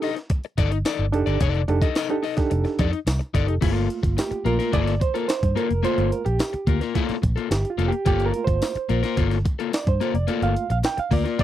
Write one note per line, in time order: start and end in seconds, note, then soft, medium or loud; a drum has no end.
0.02 0.17 D#4 medium
0.02 0.16 A4 medium
0.02 0.16 D#5 medium
0.02 open hi-hat medium
0.16 muted clean electric guitar stroke soft
0.16 snare soft
0.16 closed hi-hat medium
0.30 muted clean electric guitar stroke soft
0.30 kick loud
0.30 closed hi-hat medium
0.44 muted clean electric guitar stroke medium
0.44 closed hi-hat soft
0.58 0.82 G1 medium
0.58 0.77 D#4 medium
0.58 0.72 A4 loud
0.58 0.71 D5 loud
0.58 kick medium
0.58 closed hi-hat medium
0.72 muted clean electric guitar stroke soft
0.72 closed hi-hat medium
0.85 1.05 D#4 medium
0.85 1.05 A4 medium
0.85 1.05 D5 medium
0.85 snare loud
0.85 closed hi-hat loud
0.85 tambourine medium
0.99 1.13 G1 medium
1.12 1.25 F1 medium
1.12 1.37 D4 loud
1.12 1.37 D#4 medium
1.12 1.37 G4 medium
1.12 1.38 A4 medium
1.12 muted clean electric guitar stroke medium
1.12 closed hi-hat medium
1.26 1.39 G1 medium
1.26 1.39 D#4 medium
1.26 1.40 A4 medium
1.26 1.41 D5 medium
1.26 closed hi-hat soft
1.40 1.65 F1 loud
1.40 1.61 D#4 medium
1.40 1.61 A4 medium
1.40 1.61 D5 medium
1.40 kick loud
1.40 closed hi-hat medium
1.54 closed hi-hat soft
1.68 1.80 F1 loud
1.68 1.86 D4 medium
1.68 1.87 D#4 medium
1.68 1.87 G4 medium
1.68 1.87 A4 medium
1.68 muted clean electric guitar stroke soft
1.68 closed hi-hat medium
1.82 1.95 D#4 medium
1.82 1.95 A4 medium
1.82 1.96 D#5 medium
1.82 kick loud
1.82 closed hi-hat medium
1.95 2.15 D#4 medium
1.95 2.10 A4 loud
1.95 2.10 D#5 loud
1.95 snare loud
1.95 closed hi-hat medium
1.95 tambourine medium
2.09 2.22 D4 medium
2.09 2.22 D#4 medium
2.09 2.22 G4 medium
2.09 2.22 A4 loud
2.09 muted clean electric guitar stroke soft
2.09 closed hi-hat soft
2.23 2.38 D#4 soft
2.23 2.37 A4 medium
2.23 2.36 D#5 medium
2.23 open hi-hat medium
2.37 2.85 D4 medium
2.37 2.85 D#4 medium
2.37 2.86 G4 medium
2.37 2.86 A4 medium
2.37 muted clean electric guitar stroke medium
2.37 kick medium
2.37 snare soft
2.37 closed hi-hat medium
2.50 2.64 F1 loud
2.50 muted clean electric guitar stroke soft
2.50 closed hi-hat medium
2.65 muted clean electric guitar stroke soft
2.65 snare soft
2.65 closed hi-hat soft
2.79 2.91 F2 medium
2.79 2.98 D#4 medium
2.79 2.93 A4 medium
2.79 2.92 D5 medium
2.79 kick medium
2.79 closed hi-hat medium
2.93 muted clean electric guitar stroke soft
2.93 closed hi-hat medium
3.07 3.19 C2 medium
3.07 muted clean electric guitar stroke soft
3.07 snare loud
3.07 closed hi-hat loud
3.07 tambourine medium
3.19 muted clean electric guitar stroke soft
3.19 closed hi-hat soft
3.34 3.48 G1 loud
3.34 3.54 D#4 medium
3.34 3.48 A4 loud
3.34 3.47 D5 loud
3.34 kick medium
3.34 closed hi-hat medium
3.48 3.61 F1 medium
3.48 3.54 G4 medium
3.48 3.55 A4 loud
3.48 muted clean electric guitar stroke soft
3.48 closed hi-hat medium
3.61 3.87 G1 medium
3.61 3.72 A3 medium
3.61 4.42 A3 medium
3.61 4.42 A#3 medium
3.61 3.73 E4 medium
3.61 4.42 F4 medium
3.61 3.74 G#4 medium
3.61 kick loud
3.61 closed hi-hat medium
3.61 crash medium
3.72 3.87 A#3 medium
3.72 3.88 F4 medium
3.72 3.88 A4 medium
3.72 closed hi-hat medium
3.90 closed hi-hat medium
4.03 4.16 G1 medium
4.03 muted clean electric guitar stroke soft
4.03 kick loud
4.03 closed hi-hat medium
4.17 4.47 G4 medium
4.17 muted clean electric guitar stroke soft
4.17 snare loud
4.17 closed hi-hat loud
4.17 tambourine loud
4.31 muted clean electric guitar stroke soft
4.31 muted fingered electric bass stroke soft
4.31 closed hi-hat medium
4.45 4.58 A#1 medium
4.45 4.70 A3 medium
4.45 4.59 A#3 medium
4.45 4.70 A#3 soft
4.45 4.71 F4 medium
4.45 4.58 F4 medium
4.45 4.74 A#4 medium
4.45 4.58 A#4 medium
4.45 closed hi-hat medium
4.59 4.71 A#3 soft
4.59 4.72 F4 medium
4.59 4.73 A#4 medium
4.59 snare soft
4.59 closed hi-hat medium
4.72 4.98 G1 medium
4.72 4.93 A#3 medium
4.72 4.93 F4 medium
4.72 4.94 A4 loud
4.72 5.02 D5 loud
4.72 kick loud
4.72 closed hi-hat medium
4.87 snare soft
4.87 closed hi-hat medium
5.00 5.16 C5 medium
5.00 muted clean electric guitar stroke soft
5.00 kick medium
5.00 closed hi-hat medium
5.14 5.27 A#3 soft
5.14 5.28 F4 medium
5.14 5.28 A4 medium
5.14 5.29 A#4 medium
5.14 closed hi-hat medium
5.28 5.57 C5 medium
5.28 muted clean electric guitar stroke soft
5.28 snare loud
5.28 closed hi-hat loud
5.28 tambourine medium
5.43 5.55 G2 medium
5.43 kick loud
5.43 closed hi-hat medium
5.56 5.71 A#3 medium
5.56 5.70 F4 medium
5.56 5.68 A4 medium
5.56 5.85 A#4 medium
5.56 closed hi-hat medium
5.69 5.83 F1 medium
5.69 muted clean electric guitar stroke soft
5.69 closed hi-hat medium
5.83 6.21 A3 medium
5.83 6.09 A#3 medium
5.83 6.21 A#3 medium
5.83 6.10 F4 medium
5.83 6.22 F4 medium
5.83 6.10 A4 medium
5.83 6.13 C5 loud
5.83 closed hi-hat medium
5.98 6.10 G1 loud
5.98 closed hi-hat medium
6.12 6.26 A#4 medium
6.12 closed hi-hat medium
6.25 6.38 A#1 medium
6.25 6.77 G4 medium
6.25 muted clean electric guitar stroke soft
6.25 closed hi-hat medium
6.39 muted clean electric guitar stroke soft
6.39 snare loud
6.39 closed hi-hat medium
6.39 tambourine medium
6.53 muted clean electric guitar stroke medium
6.53 muted fingered electric bass stroke soft
6.53 closed hi-hat medium
6.67 6.79 D2 medium
6.67 6.82 A#3 medium
6.67 6.81 F4 medium
6.67 6.80 A#4 medium
6.67 kick medium
6.67 closed hi-hat medium
6.81 6.94 A#3 soft
6.81 6.95 F4 medium
6.81 6.96 A#4 medium
6.81 snare soft
6.81 closed hi-hat medium
6.95 7.20 A3 medium
6.95 7.15 A#3 medium
6.95 7.20 A#3 medium
6.95 7.20 F4 medium
6.95 7.16 F4 loud
6.95 7.16 A4 medium
6.95 kick medium
6.95 closed hi-hat medium
7.09 muted fingered electric bass stroke soft
7.09 snare soft
7.09 closed hi-hat medium
7.22 7.35 A#1 medium
7.22 muted clean electric guitar stroke soft
7.22 kick medium
7.22 closed hi-hat medium
7.36 7.49 A#3 medium
7.36 7.50 F4 soft
7.36 7.50 A4 medium
7.36 closed hi-hat medium
7.50 7.63 G1 medium
7.50 7.70 G4 medium
7.50 muted clean electric guitar stroke soft
7.50 snare loud
7.50 closed hi-hat loud
7.50 tambourine medium
7.65 closed hi-hat medium
7.70 7.89 F4 medium
7.78 7.90 F1 loud
7.78 7.93 A#3 medium
7.78 7.92 F4 medium
7.78 7.91 A4 medium
7.78 closed hi-hat medium
7.88 8.05 G4 medium
7.88 muted clean electric guitar stroke soft
7.92 closed hi-hat medium
8.05 8.30 G1 medium
8.05 8.31 A#3 medium
8.05 8.32 F4 medium
8.05 8.26 G4 medium
8.05 8.32 A4 medium
8.05 kick loud
8.05 closed hi-hat medium
8.20 closed hi-hat medium
8.26 8.44 A#4 loud
8.34 8.71 A3 soft
8.34 8.71 A#3 medium
8.34 8.72 F4 medium
8.34 closed hi-hat medium
8.44 8.60 G1 medium
8.44 9.23 C5 medium
8.44 muted clean electric guitar stroke soft
8.44 kick medium
8.44 closed hi-hat medium
8.62 muted clean electric guitar stroke soft
8.62 snare loud
8.62 closed hi-hat loud
8.62 tambourine medium
8.75 muted fingered electric bass stroke soft
8.75 muted clean electric guitar stroke soft
8.75 closed hi-hat medium
8.89 9.02 A#1 medium
8.89 9.03 A#3 medium
8.89 9.03 F4 medium
8.89 9.02 A#4 medium
8.89 closed hi-hat medium
9.03 9.16 A#3 medium
9.03 9.17 F4 medium
9.03 9.18 A#4 medium
9.03 snare soft
9.03 closed hi-hat medium
9.17 9.42 G1 loud
9.17 9.37 A#3 medium
9.17 9.37 F4 loud
9.17 9.37 A4 medium
9.17 kick loud
9.17 closed hi-hat medium
9.31 snare soft
9.31 closed hi-hat medium
9.45 muted clean electric guitar stroke soft
9.45 kick medium
9.45 closed hi-hat medium
9.59 9.71 A#3 medium
9.59 9.72 F4 medium
9.59 9.72 A4 medium
9.59 closed hi-hat medium
9.73 9.88 D5 medium
9.73 muted clean electric guitar stroke soft
9.73 snare loud
9.73 closed hi-hat loud
9.73 tambourine medium
9.87 9.99 G2 medium
9.87 10.13 C5 medium
9.87 kick loud
9.87 closed hi-hat medium
10.00 10.16 A#3 medium
10.00 10.14 F4 medium
10.00 10.13 A4 medium
10.00 closed hi-hat medium
10.14 10.26 F1 medium
10.14 10.43 D5 medium
10.14 muted clean electric guitar stroke medium
10.14 closed hi-hat medium
10.27 10.65 A3 medium
10.27 10.53 A#3 medium
10.27 10.66 A#3 medium
10.27 10.54 F4 medium
10.27 10.66 F4 medium
10.27 10.54 A4 medium
10.27 closed hi-hat medium
10.42 10.54 G1 medium
10.42 10.70 F5 loud
10.42 closed hi-hat medium
10.56 closed hi-hat medium
10.70 10.82 A#1 medium
10.70 10.77 F5 medium
10.70 muted clean electric guitar stroke soft
10.70 closed hi-hat medium
10.83 10.99 G5 loud
10.83 muted clean electric guitar stroke soft
10.83 snare loud
10.83 closed hi-hat loud
10.83 tambourine medium
10.97 11.13 F5 medium
10.97 muted clean electric guitar stroke medium
10.97 muted fingered electric bass stroke soft
10.97 closed hi-hat medium
11.11 11.23 D2 medium
11.11 11.25 A#3 medium
11.11 11.24 F4 medium
11.11 11.23 A#4 medium
11.11 11.40 D5 loud
11.11 kick medium
11.11 open hi-hat medium
11.24 11.38 A#3 soft
11.24 11.38 F4 medium
11.24 11.40 A#4 medium
11.24 snare soft
11.24 closed hi-hat medium
11.39 11.44 A#3 medium
11.39 11.44 F4 medium
11.39 11.44 A4 loud
11.39 kick loud
11.39 closed hi-hat medium